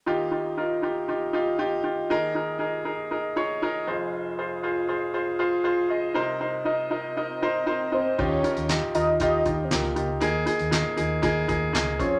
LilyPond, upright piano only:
<<
  \new Staff \with { instrumentName = "Upright piano" } { \time 4/4 \key aes \major \tempo 4 = 118 <ees' f' g'>8 <ees' f' g'>8 <ees' f' bes'>8 <ees' f' g'>8 <ees' f' g'>8 <ees' f' g'>8 <ees' f' g'>8 <ees' f' g'>8 | <ees' aes' bes'>8 <ees' aes' bes'>8 <ees' aes' bes'>8 <ees' aes' bes'>8 <ees' aes' bes'>8 <ees' aes' des''>8 <ees' aes' bes'>8 <f' aes' c''>8~ | <f' aes' c''>8 <f' aes' c''>8 <f' aes' c''>8 <f' aes' c''>8 <f' aes' c''>8 <f' aes' c''>8 <f' aes' c''>8 <f' aes' ees''>8 | <ees' bes' c''>8 <ees' bes' c''>8 <ees' bes' ees''>8 <ees' bes' ees''>8 <ees' bes' ees''>8 <ees' bes' c''>8 <ees' bes' c''>8 <ees' bes' ees''>8 |
<ees' f' g'>8 <ees' f' bes'>8 <ees' f' g'>8 <ees' f' bes'>8 <ees' f' g'>8 <ees' f' g'>8 <ees' f' g'>8 <ees' f' g'>8 | <bes ees' aes'>8 <bes ees' aes'>8 <bes ees' aes'>8 <bes ees' aes'>8 <bes ees' aes'>8 <bes ees' aes'>8 <bes ees' aes'>8 <c' f' aes'>8 | }
  \new Staff \with { instrumentName = "Upright piano" } { \clef bass \time 4/4 \key aes \major <ees, ees>1 | <ees, ees>2.~ <ees, ees>8 <f,, f,>8~ | <f,, f,>2.~ <f,, f,>8 r8 | <c, c>1 |
ees4. r2 r8 | ees4. r2 r8 | }
>>